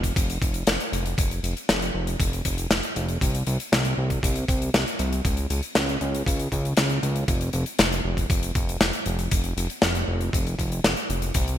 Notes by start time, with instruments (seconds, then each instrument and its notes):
Already playing: analog synth bass F1
0.03 kick, closed hi-hat
0.16 analog synth bass F1, kick, closed hi-hat
0.30 closed hi-hat
0.42 analog synth bass F1, kick, closed hi-hat
0.54 closed hi-hat
0.67 analog synth bass F1, snare, closed hi-hat
0.80 closed hi-hat
0.93 analog synth bass F1, closed hi-hat
1.06 closed hi-hat
1.18 analog synth bass F1, kick, closed hi-hat
1.31 closed hi-hat
1.43 analog synth bass F1, closed hi-hat
1.57 closed hi-hat
1.69 analog synth bass F1, snare, closed hi-hat
1.82 closed hi-hat
1.94 analog synth bass F1
2.07 closed hi-hat
2.20 analog synth bass F1, kick, closed hi-hat
2.33 closed hi-hat
2.45 analog synth bass F1, kick, closed hi-hat
2.58 closed hi-hat
2.71 analog synth bass F1, snare, closed hi-hat
2.83 closed hi-hat
2.96 analog synth bass F1, closed hi-hat
3.08 closed hi-hat
3.21 analog synth bass C2, kick, closed hi-hat
3.35 closed hi-hat
3.47 analog synth bass C2, closed hi-hat
3.60 closed hi-hat
3.72 analog synth bass C2, snare, closed hi-hat
3.85 closed hi-hat
3.98 analog synth bass C2
4.10 kick, closed hi-hat
4.23 analog synth bass C2, kick, closed hi-hat
4.36 closed hi-hat
4.48 analog synth bass C2, kick, closed hi-hat
4.62 closed hi-hat
4.74 analog synth bass C2, snare, closed hi-hat
4.88 closed hi-hat
4.99 analog synth bass C2, closed hi-hat
5.13 closed hi-hat
5.25 analog synth bass C#2, kick, closed hi-hat
5.37 closed hi-hat
5.50 analog synth bass C#2, closed hi-hat
5.63 closed hi-hat
5.75 analog synth bass C#2, snare, closed hi-hat
5.89 closed hi-hat
6.01 analog synth bass C#2, closed hi-hat
6.15 closed hi-hat
6.26 analog synth bass C#2, kick, closed hi-hat
6.40 closed hi-hat
6.52 analog synth bass C#2, kick, closed hi-hat
6.65 closed hi-hat
6.77 analog synth bass C#2, snare, closed hi-hat
6.90 closed hi-hat
7.03 analog synth bass C#2, closed hi-hat
7.16 closed hi-hat
7.28 analog synth bass F1, kick, closed hi-hat
7.41 closed hi-hat
7.53 analog synth bass F1, closed hi-hat
7.66 closed hi-hat
7.79 analog synth bass F1, snare, closed hi-hat
7.92 closed hi-hat
8.04 analog synth bass F1
8.17 kick, closed hi-hat
8.30 analog synth bass F1, kick, closed hi-hat
8.43 closed hi-hat
8.55 analog synth bass F1, kick, closed hi-hat
8.69 closed hi-hat
8.81 analog synth bass F1, snare, closed hi-hat
8.93 closed hi-hat
9.06 analog synth bass F1, closed hi-hat
9.19 closed hi-hat
9.31 analog synth bass F1, kick, closed hi-hat
9.44 closed hi-hat
9.57 analog synth bass F1, closed hi-hat
9.70 closed hi-hat
9.82 analog synth bass F1, snare, closed hi-hat
9.95 closed hi-hat
10.08 analog synth bass F1
10.21 closed hi-hat
10.33 analog synth bass F1, kick, closed hi-hat
10.47 closed hi-hat
10.59 analog synth bass F1, kick, closed hi-hat
10.72 closed hi-hat
10.84 analog synth bass F1, snare, closed hi-hat
10.97 closed hi-hat
11.10 analog synth bass F1, closed hi-hat
11.22 closed hi-hat
11.34 analog synth bass C2, kick, closed hi-hat
11.48 closed hi-hat